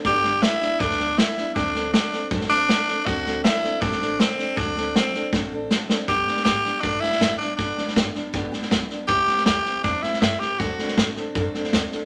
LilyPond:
<<
  \new Staff \with { instrumentName = "Tenor saxophone" } { \time 4/4 \key g \major \tempo 4 = 159 g'4 e'4 d'4 e'4 | d'4 d'4 r8 d'4. | fis'4 e'4 d'4 c'4 | d'4 c'4 r2 |
g'4 g'4 d'8 e'4 d'8 | d'4. r2 r8 | g'4 g'4 d'8 e'8 e'8 g'8 | fis'4. r2 r8 | }
  \new Staff \with { instrumentName = "Steel-string acoustic guitar" } { \time 4/4 \key g \major <g, d g b d' g'>8 <g b d' g'>8 <g b d' g'>8 <g b d' g'>8 <g, d g b d' g'>8 <g b d' g'>8 <g b d' g'>8 <g b d' g'>8 | <d fis c' d' a'>8 <c' d' a'>8 <fis c' d' a'>8 <c' d' a'>8 <d fis c' d' a'>8 <c' d' a'>8 <fis d' a'>8 <c' d' a'>8 | <d fis c' d' a'>8 <c' d' a'>8 <fis c' d' a'>8 <c' d' a'>8 <d fis c' d' a'>8 <c' d' a'>8 <fis c' d' a'>8 <c' d' a'>8 | <d fis c' d' a'>8 <c' d' a'>8 <fis c' d' a'>8 <c' d' a'>8 <d fis c' d' a'>8 <c' d' a'>8 <fis c' d' a'>8 <c' d' a'>8 |
<g, d g b d' g'>8 <g b d' g'>8 <g b d' g'>8 <g b d' g'>8 <g, d g b d' g'>8 <g b d' g'>8 <g b d'>8 <g b d' g'>8 | <g, d g b d' g'>8 <g b d' g'>8 <g b d' g'>8 <g b d' g'>8 <g, d g b d' g'>8 <g b d' g'>8 <g b d' g'>8 <g b d' g'>8 | <c g c' e' g'>8 <c' e' g'>8 <g c' e' g'>8 <c' e' g'>8 <c g c' e' g'>8 <c' e' g'>8 <g c' e' g'>8 <c' e' g'>8 | <d fis c' d' a'>8 <c' d' a'>8 <fis c' d' a'>8 <c' d' a'>8 <d fis c' d' a'>8 <c' d' a'>8 <fis c' d' a'>8 <c' d' a'>8 | }
  \new Staff \with { instrumentName = "Upright bass" } { \clef bass \time 4/4 \key g \major g,,4. r8 d,4. r8 | d,4. r8 a,,4. r8 | d,4. r8 a,,4. r8 | d,4. r8 a,,4. r8 |
b,,8 r8 aes,,8 r8 a,,8 r8 a,,8 r8 | b,,8 r8 g,,8 r8 a,,8 r8 b,,8 r8 | c,8 r8 d,8 r8 e,8 r8 g,8 r8 | d,8 r8 a,8 r8 fis,8 r8 d,8 r8 | }
  \new DrumStaff \with { instrumentName = "Drums" } \drummode { \time 4/4 <bd sn>8 sn8 <hhp sn>8 sn8 <bd sn>16 sn16 sn8 <hhp sn>8 sn8 | <bd sn>8 sn8 <hhp sn>8 sn8 <bd sn>16 sn16 sn8 <hhp sn>8 sn8 | <bd sn>8 sn8 <hhp sn>8 sn8 <bd sn>16 sn16 sn8 <hhp sn>8 sn8 | <bd sn>8 sn8 <hhp sn>8 sn8 <bd sn>4 <hhp sn>8 sn8 |
<bd sn>8 sn16 sn16 <hhp bd sn>8 sn8 <bd sn>8 sn16 sn16 <hhp bd sn>8 sn8 | <bd sn>8 sn16 sn16 <hhp bd sn>8 sn8 <bd sn>8 sn16 sn16 <hhp bd sn>8 sn8 | <bd sn>8 sn16 sn16 <hhp bd sn>8 sn8 <bd sn>8 sn16 sn16 <hhp bd sn>8 sn8 | <bd sn>8 sn16 sn16 <hhp bd sn>8 sn8 <bd sn>8 sn16 sn16 <hhp bd sn>8 sn8 | }
>>